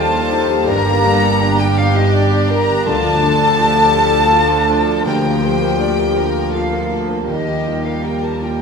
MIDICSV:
0, 0, Header, 1, 11, 480
1, 0, Start_track
1, 0, Tempo, 730816
1, 446, Time_signature, 3, 2, 24, 8
1, 3329, Tempo, 749064
1, 5604, End_track
2, 0, Start_track
2, 0, Title_t, "Flute"
2, 0, Program_c, 0, 73
2, 0, Note_on_c, 0, 81, 100
2, 452, Note_on_c, 0, 82, 101
2, 462, Note_off_c, 0, 81, 0
2, 1048, Note_on_c, 0, 79, 80
2, 1057, Note_off_c, 0, 82, 0
2, 1168, Note_on_c, 0, 77, 96
2, 1178, Note_off_c, 0, 79, 0
2, 1291, Note_on_c, 0, 75, 82
2, 1301, Note_off_c, 0, 77, 0
2, 1408, Note_on_c, 0, 74, 79
2, 1418, Note_off_c, 0, 75, 0
2, 1646, Note_on_c, 0, 82, 89
2, 1656, Note_off_c, 0, 74, 0
2, 1882, Note_off_c, 0, 82, 0
2, 1888, Note_on_c, 0, 81, 111
2, 3306, Note_off_c, 0, 81, 0
2, 3328, Note_on_c, 0, 79, 83
2, 4088, Note_off_c, 0, 79, 0
2, 4278, Note_on_c, 0, 77, 66
2, 4500, Note_off_c, 0, 77, 0
2, 4758, Note_on_c, 0, 75, 60
2, 5113, Note_on_c, 0, 77, 50
2, 5122, Note_off_c, 0, 75, 0
2, 5242, Note_on_c, 0, 79, 59
2, 5251, Note_off_c, 0, 77, 0
2, 5362, Note_on_c, 0, 81, 53
2, 5372, Note_off_c, 0, 79, 0
2, 5487, Note_on_c, 0, 79, 60
2, 5497, Note_off_c, 0, 81, 0
2, 5604, Note_off_c, 0, 79, 0
2, 5604, End_track
3, 0, Start_track
3, 0, Title_t, "Violin section"
3, 0, Program_c, 1, 48
3, 0, Note_on_c, 1, 81, 104
3, 446, Note_off_c, 1, 81, 0
3, 447, Note_on_c, 1, 82, 127
3, 1032, Note_off_c, 1, 82, 0
3, 1047, Note_on_c, 1, 79, 105
3, 1165, Note_off_c, 1, 79, 0
3, 1165, Note_on_c, 1, 77, 100
3, 1281, Note_on_c, 1, 75, 95
3, 1284, Note_off_c, 1, 77, 0
3, 1396, Note_on_c, 1, 74, 85
3, 1402, Note_off_c, 1, 75, 0
3, 1634, Note_on_c, 1, 82, 111
3, 1638, Note_off_c, 1, 74, 0
3, 1873, Note_on_c, 1, 81, 127
3, 1877, Note_off_c, 1, 82, 0
3, 3322, Note_on_c, 1, 79, 101
3, 3324, Note_off_c, 1, 81, 0
3, 4258, Note_off_c, 1, 79, 0
3, 4286, Note_on_c, 1, 77, 69
3, 4520, Note_off_c, 1, 77, 0
3, 4753, Note_on_c, 1, 75, 76
3, 5089, Note_off_c, 1, 75, 0
3, 5122, Note_on_c, 1, 77, 64
3, 5240, Note_off_c, 1, 77, 0
3, 5240, Note_on_c, 1, 79, 66
3, 5362, Note_off_c, 1, 79, 0
3, 5366, Note_on_c, 1, 81, 60
3, 5484, Note_on_c, 1, 79, 62
3, 5487, Note_off_c, 1, 81, 0
3, 5604, Note_off_c, 1, 79, 0
3, 5604, End_track
4, 0, Start_track
4, 0, Title_t, "Violin section"
4, 0, Program_c, 2, 48
4, 0, Note_on_c, 2, 72, 89
4, 438, Note_off_c, 2, 72, 0
4, 445, Note_on_c, 2, 70, 78
4, 682, Note_on_c, 2, 69, 84
4, 684, Note_off_c, 2, 70, 0
4, 915, Note_on_c, 2, 67, 91
4, 922, Note_off_c, 2, 69, 0
4, 1871, Note_on_c, 2, 65, 78
4, 1876, Note_off_c, 2, 67, 0
4, 2111, Note_off_c, 2, 65, 0
4, 2121, Note_on_c, 2, 69, 84
4, 2358, Note_on_c, 2, 67, 73
4, 2362, Note_off_c, 2, 69, 0
4, 2842, Note_off_c, 2, 67, 0
4, 2843, Note_on_c, 2, 65, 73
4, 3084, Note_off_c, 2, 65, 0
4, 3089, Note_on_c, 2, 69, 76
4, 3330, Note_off_c, 2, 69, 0
4, 3334, Note_on_c, 2, 70, 70
4, 3566, Note_off_c, 2, 70, 0
4, 3566, Note_on_c, 2, 72, 78
4, 3799, Note_on_c, 2, 74, 65
4, 3806, Note_off_c, 2, 72, 0
4, 4034, Note_on_c, 2, 70, 66
4, 4040, Note_off_c, 2, 74, 0
4, 4266, Note_on_c, 2, 69, 63
4, 4275, Note_off_c, 2, 70, 0
4, 4736, Note_on_c, 2, 67, 63
4, 4749, Note_off_c, 2, 69, 0
4, 5218, Note_off_c, 2, 67, 0
4, 5229, Note_on_c, 2, 70, 56
4, 5604, Note_off_c, 2, 70, 0
4, 5604, End_track
5, 0, Start_track
5, 0, Title_t, "French horn section"
5, 0, Program_c, 3, 60
5, 0, Note_on_c, 3, 69, 106
5, 442, Note_on_c, 3, 58, 113
5, 446, Note_off_c, 3, 69, 0
5, 1041, Note_off_c, 3, 58, 0
5, 1046, Note_on_c, 3, 67, 91
5, 1165, Note_off_c, 3, 67, 0
5, 1166, Note_on_c, 3, 65, 81
5, 1277, Note_on_c, 3, 63, 76
5, 1285, Note_off_c, 3, 65, 0
5, 1400, Note_off_c, 3, 63, 0
5, 1402, Note_on_c, 3, 62, 90
5, 1641, Note_off_c, 3, 62, 0
5, 1641, Note_on_c, 3, 70, 103
5, 1875, Note_off_c, 3, 70, 0
5, 1878, Note_on_c, 3, 69, 114
5, 3327, Note_off_c, 3, 69, 0
5, 3331, Note_on_c, 3, 67, 99
5, 4263, Note_off_c, 3, 67, 0
5, 4285, Note_on_c, 3, 65, 67
5, 4520, Note_off_c, 3, 65, 0
5, 4766, Note_on_c, 3, 63, 69
5, 5096, Note_off_c, 3, 63, 0
5, 5130, Note_on_c, 3, 65, 54
5, 5244, Note_off_c, 3, 65, 0
5, 5249, Note_on_c, 3, 67, 65
5, 5366, Note_off_c, 3, 67, 0
5, 5371, Note_on_c, 3, 69, 50
5, 5487, Note_off_c, 3, 69, 0
5, 5495, Note_on_c, 3, 67, 46
5, 5604, Note_off_c, 3, 67, 0
5, 5604, End_track
6, 0, Start_track
6, 0, Title_t, "Felt piano"
6, 0, Program_c, 4, 0
6, 0, Control_c, 4, 64, 127
6, 0, Note_on_c, 4, 39, 68
6, 0, Note_on_c, 4, 63, 57
6, 0, Note_on_c, 4, 65, 57
6, 0, Note_on_c, 4, 67, 55
6, 91, Note_off_c, 4, 67, 0
6, 91, Note_on_c, 4, 67, 60
6, 163, Note_off_c, 4, 65, 0
6, 210, Note_off_c, 4, 63, 0
6, 210, Note_on_c, 4, 63, 62
6, 280, Note_off_c, 4, 67, 0
6, 329, Note_on_c, 4, 67, 56
6, 399, Note_off_c, 4, 63, 0
6, 421, Note_off_c, 4, 39, 0
6, 443, Note_on_c, 4, 43, 72
6, 447, Note_off_c, 4, 67, 0
6, 458, Control_c, 4, 64, 0
6, 562, Note_on_c, 4, 67, 61
6, 564, Control_c, 4, 64, 127
6, 684, Note_on_c, 4, 62, 63
6, 755, Note_off_c, 4, 67, 0
6, 805, Note_on_c, 4, 67, 63
6, 875, Note_off_c, 4, 62, 0
6, 922, Note_on_c, 4, 62, 66
6, 995, Note_off_c, 4, 67, 0
6, 1043, Note_on_c, 4, 67, 55
6, 1114, Note_off_c, 4, 62, 0
6, 1167, Note_on_c, 4, 62, 58
6, 1235, Note_off_c, 4, 67, 0
6, 1278, Note_on_c, 4, 67, 60
6, 1357, Note_off_c, 4, 62, 0
6, 1405, Note_on_c, 4, 62, 62
6, 1472, Note_off_c, 4, 67, 0
6, 1523, Note_on_c, 4, 67, 62
6, 1595, Note_off_c, 4, 62, 0
6, 1645, Note_on_c, 4, 62, 57
6, 1713, Note_off_c, 4, 67, 0
6, 1763, Note_on_c, 4, 67, 56
6, 1834, Note_off_c, 4, 62, 0
6, 1852, Note_off_c, 4, 43, 0
6, 1880, Note_on_c, 4, 38, 67
6, 1881, Note_off_c, 4, 67, 0
6, 1892, Control_c, 4, 64, 0
6, 1987, Control_c, 4, 64, 127
6, 1998, Note_on_c, 4, 65, 58
6, 2117, Note_on_c, 4, 62, 56
6, 2192, Note_off_c, 4, 65, 0
6, 2239, Note_on_c, 4, 69, 57
6, 2312, Note_off_c, 4, 62, 0
6, 2358, Note_on_c, 4, 65, 61
6, 2433, Note_off_c, 4, 69, 0
6, 2479, Note_on_c, 4, 69, 56
6, 2553, Note_off_c, 4, 65, 0
6, 2600, Note_on_c, 4, 62, 53
6, 2674, Note_off_c, 4, 69, 0
6, 2722, Note_on_c, 4, 69, 56
6, 2794, Note_off_c, 4, 62, 0
6, 2839, Note_on_c, 4, 65, 59
6, 2915, Note_off_c, 4, 69, 0
6, 2959, Note_on_c, 4, 69, 63
6, 3034, Note_off_c, 4, 65, 0
6, 3082, Note_on_c, 4, 62, 58
6, 3155, Note_off_c, 4, 69, 0
6, 3197, Note_on_c, 4, 69, 49
6, 3278, Note_off_c, 4, 62, 0
6, 3301, Note_off_c, 4, 38, 0
6, 3322, Note_on_c, 4, 38, 69
6, 3324, Note_off_c, 4, 69, 0
6, 3339, Control_c, 4, 64, 0
6, 3445, Note_on_c, 4, 65, 48
6, 3452, Control_c, 4, 64, 127
6, 3559, Note_on_c, 4, 53, 47
6, 3638, Note_off_c, 4, 65, 0
6, 3681, Note_on_c, 4, 70, 57
6, 3754, Note_off_c, 4, 53, 0
6, 3805, Note_on_c, 4, 65, 54
6, 3875, Note_off_c, 4, 70, 0
6, 3919, Note_on_c, 4, 70, 49
6, 3995, Note_off_c, 4, 65, 0
6, 4034, Note_on_c, 4, 65, 47
6, 4111, Note_off_c, 4, 70, 0
6, 4153, Note_on_c, 4, 70, 46
6, 4228, Note_off_c, 4, 65, 0
6, 4272, Note_on_c, 4, 65, 51
6, 4346, Note_off_c, 4, 70, 0
6, 4387, Note_on_c, 4, 58, 47
6, 4466, Note_off_c, 4, 65, 0
6, 4513, Note_on_c, 4, 65, 44
6, 4583, Note_off_c, 4, 58, 0
6, 4625, Note_on_c, 4, 70, 44
6, 4706, Note_off_c, 4, 65, 0
6, 4727, Note_off_c, 4, 38, 0
6, 4748, Note_on_c, 4, 39, 52
6, 4750, Note_off_c, 4, 70, 0
6, 4766, Control_c, 4, 64, 0
6, 4858, Control_c, 4, 64, 127
6, 4869, Note_on_c, 4, 67, 43
6, 4993, Note_on_c, 4, 65, 34
6, 5065, Note_off_c, 4, 67, 0
6, 5111, Note_on_c, 4, 70, 41
6, 5188, Note_off_c, 4, 65, 0
6, 5231, Note_on_c, 4, 67, 39
6, 5308, Note_off_c, 4, 70, 0
6, 5354, Note_on_c, 4, 70, 37
6, 5431, Note_off_c, 4, 67, 0
6, 5477, Note_on_c, 4, 65, 36
6, 5556, Note_off_c, 4, 70, 0
6, 5604, Note_off_c, 4, 39, 0
6, 5604, Note_off_c, 4, 65, 0
6, 5604, End_track
7, 0, Start_track
7, 0, Title_t, "Harp"
7, 0, Program_c, 5, 46
7, 0, Note_on_c, 5, 51, 70
7, 0, Note_on_c, 5, 53, 56
7, 0, Note_on_c, 5, 58, 55
7, 0, Note_on_c, 5, 63, 54
7, 0, Note_on_c, 5, 65, 67
7, 0, Note_on_c, 5, 67, 58
7, 0, Note_on_c, 5, 77, 66
7, 0, Note_on_c, 5, 79, 55
7, 0, Note_on_c, 5, 86, 52
7, 87, Note_off_c, 5, 67, 0
7, 203, Note_off_c, 5, 65, 0
7, 211, Note_on_c, 5, 65, 62
7, 320, Note_off_c, 5, 63, 0
7, 328, Note_on_c, 5, 63, 57
7, 448, Note_on_c, 5, 43, 75
7, 466, Note_off_c, 5, 53, 0
7, 466, Note_off_c, 5, 63, 0
7, 467, Note_off_c, 5, 51, 0
7, 467, Note_off_c, 5, 65, 0
7, 467, Note_off_c, 5, 77, 0
7, 568, Note_on_c, 5, 50, 54
7, 641, Note_off_c, 5, 58, 0
7, 684, Note_on_c, 5, 55, 65
7, 925, Note_on_c, 5, 67, 62
7, 998, Note_off_c, 5, 86, 0
7, 1043, Note_on_c, 5, 62, 62
7, 1167, Note_on_c, 5, 74, 63
7, 1286, Note_off_c, 5, 79, 0
7, 1294, Note_on_c, 5, 79, 53
7, 1402, Note_off_c, 5, 67, 0
7, 1410, Note_on_c, 5, 67, 64
7, 1518, Note_off_c, 5, 62, 0
7, 1526, Note_on_c, 5, 62, 56
7, 1640, Note_off_c, 5, 55, 0
7, 1647, Note_on_c, 5, 55, 56
7, 1760, Note_off_c, 5, 50, 0
7, 1768, Note_on_c, 5, 50, 53
7, 1880, Note_off_c, 5, 50, 0
7, 1888, Note_on_c, 5, 50, 76
7, 1900, Note_off_c, 5, 43, 0
7, 1902, Note_off_c, 5, 55, 0
7, 1903, Note_off_c, 5, 67, 0
7, 1904, Note_off_c, 5, 79, 0
7, 2008, Note_on_c, 5, 53, 52
7, 2112, Note_off_c, 5, 62, 0
7, 2120, Note_on_c, 5, 62, 56
7, 2366, Note_on_c, 5, 65, 60
7, 2483, Note_off_c, 5, 74, 0
7, 2490, Note_on_c, 5, 74, 60
7, 2731, Note_on_c, 5, 77, 57
7, 2843, Note_off_c, 5, 74, 0
7, 2961, Note_off_c, 5, 65, 0
7, 3201, Note_off_c, 5, 53, 0
7, 3208, Note_on_c, 5, 53, 55
7, 3327, Note_off_c, 5, 50, 0
7, 3334, Note_on_c, 5, 50, 57
7, 3442, Note_off_c, 5, 62, 0
7, 3450, Note_on_c, 5, 62, 44
7, 3566, Note_off_c, 5, 53, 0
7, 3574, Note_on_c, 5, 53, 54
7, 3689, Note_on_c, 5, 65, 51
7, 3810, Note_on_c, 5, 58, 47
7, 3921, Note_off_c, 5, 65, 0
7, 3928, Note_on_c, 5, 65, 54
7, 4041, Note_off_c, 5, 77, 0
7, 4049, Note_on_c, 5, 77, 47
7, 4164, Note_on_c, 5, 86, 41
7, 4276, Note_off_c, 5, 65, 0
7, 4517, Note_on_c, 5, 65, 47
7, 4628, Note_off_c, 5, 62, 0
7, 4636, Note_on_c, 5, 62, 40
7, 4755, Note_on_c, 5, 51, 49
7, 4775, Note_off_c, 5, 62, 0
7, 4778, Note_off_c, 5, 50, 0
7, 4878, Note_on_c, 5, 63, 37
7, 5002, Note_on_c, 5, 55, 43
7, 5111, Note_off_c, 5, 65, 0
7, 5119, Note_on_c, 5, 65, 36
7, 5238, Note_on_c, 5, 70, 38
7, 5360, Note_on_c, 5, 67, 42
7, 5473, Note_off_c, 5, 77, 0
7, 5481, Note_on_c, 5, 77, 35
7, 5604, Note_off_c, 5, 51, 0
7, 5604, Note_off_c, 5, 53, 0
7, 5604, Note_off_c, 5, 55, 0
7, 5604, Note_off_c, 5, 58, 0
7, 5604, Note_off_c, 5, 63, 0
7, 5604, Note_off_c, 5, 65, 0
7, 5604, Note_off_c, 5, 67, 0
7, 5604, Note_off_c, 5, 70, 0
7, 5604, Note_off_c, 5, 77, 0
7, 5604, Note_off_c, 5, 86, 0
7, 5604, End_track
8, 0, Start_track
8, 0, Title_t, "Viola section"
8, 0, Program_c, 6, 48
8, 0, Note_on_c, 6, 55, 76
8, 0, Note_on_c, 6, 65, 80
8, 421, Note_off_c, 6, 65, 0
8, 445, Note_on_c, 6, 62, 86
8, 1883, Note_off_c, 6, 55, 0
8, 1884, Note_on_c, 6, 53, 78
8, 3301, Note_off_c, 6, 62, 0
8, 3333, Note_on_c, 6, 58, 64
8, 4732, Note_off_c, 6, 53, 0
8, 4758, Note_on_c, 6, 55, 56
8, 5604, Note_off_c, 6, 55, 0
8, 5604, Note_off_c, 6, 58, 0
8, 5604, End_track
9, 0, Start_track
9, 0, Title_t, "Timpani"
9, 0, Program_c, 7, 47
9, 1885, Note_on_c, 7, 50, 81
9, 2579, Note_off_c, 7, 50, 0
9, 3330, Note_on_c, 7, 50, 71
9, 4019, Note_off_c, 7, 50, 0
9, 5604, End_track
10, 0, Start_track
10, 0, Title_t, "Cello section"
10, 0, Program_c, 8, 48
10, 0, Note_on_c, 8, 39, 74
10, 446, Note_off_c, 8, 39, 0
10, 446, Note_on_c, 8, 43, 82
10, 1880, Note_off_c, 8, 43, 0
10, 1883, Note_on_c, 8, 38, 78
10, 4757, Note_off_c, 8, 38, 0
10, 4757, Note_on_c, 8, 39, 61
10, 5604, Note_off_c, 8, 39, 0
10, 5604, End_track
11, 0, Start_track
11, 0, Title_t, "Double bass section"
11, 0, Program_c, 10, 48
11, 0, Note_on_c, 10, 39, 77
11, 445, Note_on_c, 10, 31, 80
11, 448, Note_off_c, 10, 39, 0
11, 1880, Note_off_c, 10, 31, 0
11, 1889, Note_on_c, 10, 38, 75
11, 4757, Note_on_c, 10, 39, 63
11, 4760, Note_off_c, 10, 38, 0
11, 5604, Note_off_c, 10, 39, 0
11, 5604, End_track
0, 0, End_of_file